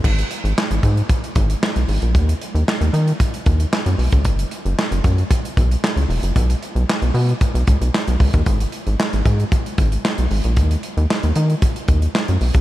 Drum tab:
CC |x---------------|----------------|----------------|----------------|
HH |-xxx-xxxxxxx-xox|xxxx-xxxxxxx-xox|xxxx-xxxxxxx-xox|xxxx-xoxxxxx-xox|
CP |----x-------x---|----x-------x---|----x-------x---|----x-------x---|
SD |----o-------o---|----o-------o---|----o-------o---|----o-------o---|
BD |o-----o-o-o-----|o-------o-o----o|o-----o-o-o-----|o-------o-o---oo|

CC |----------------|----------------|
HH |xxxx-xxxxxxx-xox|xxxx-xxxxxxx-xox|
CP |----x-------x---|----x-------x---|
SD |----o-------o---|----o-------o---|
BD |o-----o-o-o-----|o-------o-o----o|